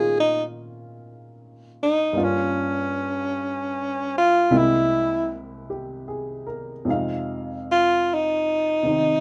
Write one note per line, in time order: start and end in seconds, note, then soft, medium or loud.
0.00 2.12 A#2 medium
0.00 2.14 G#3 medium
0.00 2.13 A#3 soft
0.00 2.15 C4 medium
0.00 2.14 C#4 soft
0.00 2.14 D#4 soft
0.00 2.15 F4 medium
0.00 0.19 G#4 medium
0.20 0.44 D#4 medium
1.83 2.25 D#4 medium
2.13 4.50 G2 medium
2.13 4.50 G3 soft
2.13 4.50 A#3 soft
2.13 4.51 C#4 soft
2.18 4.52 F4 medium
2.24 4.17 C#4 medium
4.18 4.59 F4 medium
4.50 6.87 C2 medium
4.50 6.85 C3 medium
4.50 6.85 G#3 medium
4.50 6.87 A#3 medium
4.50 6.87 E4 medium
4.57 5.34 E4 medium
5.70 6.46 G4 soft
6.08 6.70 G#4 soft
6.47 7.09 A#4 soft
6.85 9.20 F2 medium
6.85 8.81 C3 medium
6.85 9.20 G#3 soft
6.89 8.85 D#4 soft
6.89 9.20 F5 medium
7.72 8.15 F4 medium
8.14 9.20 D#4 medium
8.83 9.20 C3 soft
8.83 9.20 D#3 soft
8.83 9.20 C4 soft
8.83 9.20 D#4 soft